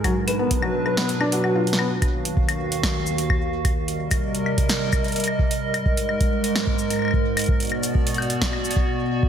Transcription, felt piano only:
\new Staff \with { instrumentName = "Felt piano" } { \time 4/4 \key ees \minor \tempo 4 = 129 fis16 r16 b'16 b16 r16 fis16 r16 b'16 b16 r16 d'16 fis'16 fis'16 f'16 r16 b16 | r1 | r1 | r1 |
r1 | }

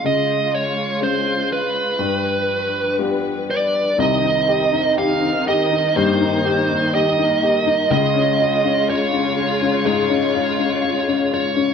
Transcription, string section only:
\new Staff \with { instrumentName = "String section" } { \clef bass \time 4/4 \key g \phrygian \tempo 4 = 61 << { <des f'>2 <g, b'>2 | \key c \phrygian <ees ees'>1 | <des f'>1 | } \\ { aes2 f2 | c'2 bes2 | aes1 | } >> }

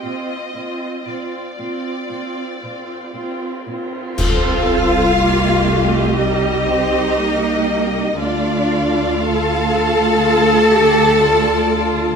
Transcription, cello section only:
\new Staff \with { instrumentName = "Cello section" } { \clef bass \time 4/4 \key c \dorian \tempo 4 = 60 bes,8 bes,8 bes,8 bes,8 bes,8 bes,8 bes,8 bes,8 | f'2 ees'2 | d'4 a'2. | }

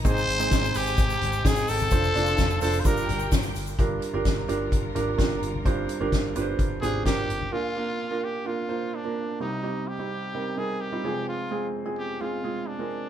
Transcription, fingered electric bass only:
\new Staff \with { instrumentName = "Fingered electric bass" } { \clef bass \time 4/4 \key g \phrygian \tempo 4 = 128 aes,,8 aes,,8 aes,,8 aes,,8 aes,,8 aes,,8 aes,,8 aes,,8 | f,,8 f,,8 f,,8 f,,8 g,,8 g,,8 g,,8 g,,8 | g,,8 r16 g,,16 g,,8 g,,8 g,,8 aes,,8 g,,8 g,,8 | g,,8 r16 g,,16 g,,8 g,,8 g,,8 aes,,8 g,,8 g,,8 |
r1 | r1 | r1 | }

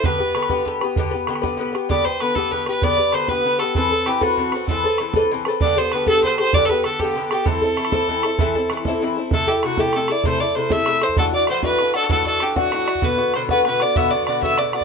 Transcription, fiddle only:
\new Staff \with { instrumentName = "Fiddle" } { \time 12/8 \key a \dorian \tempo 4. = 129 b'2 r1 | d''8 c''8 b'8 a'8 b'8 b'8 d''4 c''8 b'4 a'8 | a'4 g'8 fis'4. a'4. r4. | d''8 c''8 b'8 a'8 c''8 c''8 d''16. a'32 b'8 a'8 g'4 g'8 |
a'1~ a'4 r4 | a'8 g'8 fis'8 g'8 a'8 d''16. d''32 c''8 d''16. d''32 c''8 e''4 c''8 | a'8 d''8 c''8 b'4 a'8 a'8 a'8 g'8 fis'4. | b'4 c''8 b'8 b'8 d''8 e''8 d''8 d''8 e''8 d''8 d''8 | }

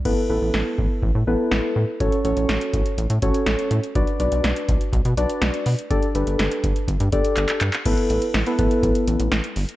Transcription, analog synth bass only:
\new Staff \with { instrumentName = "Analog synth bass" } { \clef bass \time 4/4 \key a \mixolydian \tempo 4 = 123 a,,16 r16 a,,16 a,,16 a,,16 r16 a,,16 r16 a,,16 a,16 a,,16 r16 a,,16 r16 a,16 r16 | a,,16 r16 a,,16 a,,16 a,,16 r16 a,,16 r16 a,,16 a,16 a,,16 r16 a,,16 r16 a,16 r16 | b,,16 r16 b,,16 b,,16 b,,16 r16 b,,16 r16 b,,16 b,16 b,,16 r16 b,,16 r16 b,16 r16 | g,,16 r16 g,,16 g,,16 g,,16 r16 g,,16 r16 g,,16 g,16 g,,16 r16 g,,16 r16 g,16 r16 |
a,,16 r16 a,,16 r16 a,,16 r16 a,,16 r16 a,,16 r16 a,,16 a,,16 a,,16 r16 g,,16 r16 | }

